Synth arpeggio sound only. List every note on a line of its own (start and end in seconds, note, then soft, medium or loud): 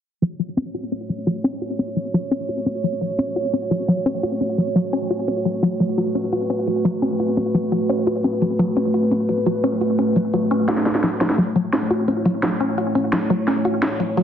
0.22 0.31 F#3 medium
0.39 0.48 F#3 medium
0.57 0.66 C#4 loud
0.74 0.88 F#4 medium
0.92 1.01 C#4 medium
1.09 1.18 F#3 medium
1.27 1.36 F#3 loud
1.44 1.53 C#4 loud
1.62 1.75 F#4 medium
1.79 1.88 C#4 medium
1.96 2.05 F#3 medium
2.14 2.23 F#3 loud
2.31 2.40 C#4 loud
2.49 2.62 F#4 medium
2.66 2.75 C#4 medium
2.84 2.92 F#3 medium
3.01 3.10 F#3 loud
3.19 3.27 C#4 loud
3.36 3.49 F#4 medium
3.53 3.62 C#4 medium
3.71 3.80 F#3 medium
3.88 3.97 F#3 loud
4.06 4.15 C#4 loud
4.23 4.36 F#4 medium
4.41 4.49 C#4 medium
4.58 4.67 F#3 medium
4.76 4.84 F#3 loud
4.93 5.02 C#4 loud
5.10 5.24 F#4 medium
5.28 5.37 C#4 medium
5.45 5.54 F#3 medium
5.63 5.72 F#3 loud
5.80 5.89 F#3 medium
5.98 6.06 F#3 loud
6.15 6.24 C#4 medium
6.33 6.46 F#4 medium
6.50 6.59 C#4 medium
6.67 6.76 F#3 medium
6.85 6.94 F#3 loud
7.02 7.11 C#4 loud
7.20 7.33 F#4 medium
7.37 7.46 C#4 medium
7.54 7.63 F#3 medium
7.72 7.81 F#3 loud
7.89 7.98 C#4 loud
8.07 8.20 F#4 medium
8.24 8.33 C#4 medium
8.42 8.51 F#3 medium
8.59 8.68 F#3 loud
8.77 8.85 C#4 loud
8.94 9.07 F#4 medium
9.11 9.20 C#4 medium
9.29 9.38 F#3 medium
9.46 9.55 F#3 loud
9.64 9.73 C#4 loud
9.81 9.94 F#4 medium
9.99 10.08 C#4 medium
10.16 10.25 F#3 medium
10.34 10.42 F#3 loud
10.51 10.60 C#4 loud
10.68 10.82 F#4 medium
10.86 10.95 C#4 medium
11.03 11.12 F#3 medium
11.21 11.30 F#3 loud
11.38 11.47 F#3 medium
11.56 11.64 F#3 medium
11.73 11.82 C#4 loud
11.91 12.04 F#4 medium
12.08 12.17 C#4 medium
12.26 12.34 F#3 medium
12.43 12.52 F#3 loud
12.60 12.69 C#4 loud
12.78 12.91 F#4 medium
12.95 13.04 C#4 medium
13.13 13.22 F#3 medium
13.30 13.39 F#3 loud
13.48 13.56 C#4 loud
13.65 13.78 F#4 medium
13.82 13.91 C#4 medium
14.00 14.09 F#3 medium
14.17 14.23 F#3 loud